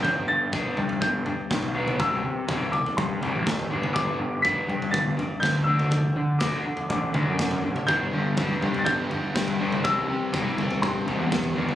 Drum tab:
SD |------------o---|------------o---|------------o---|----o-------o---|
T2 |------o--------o|------o--------o|------o--------o|----------o----o|
FT |o---o--o--o--o--|o---o--o--o--o--|o---o--o--o--o--|o---o--o--o--o--|
BD |o---o---o---o---|o---o---o---o---|o---o---o---o---|o---o---o---o---|

SD |------------o---|------------o---|
T2 |------o--------o|------o--------o|
FT |o---o--o--o--o--|o---o--o--o--o--|
BD |o---o---o---o---|o---o---o---o---|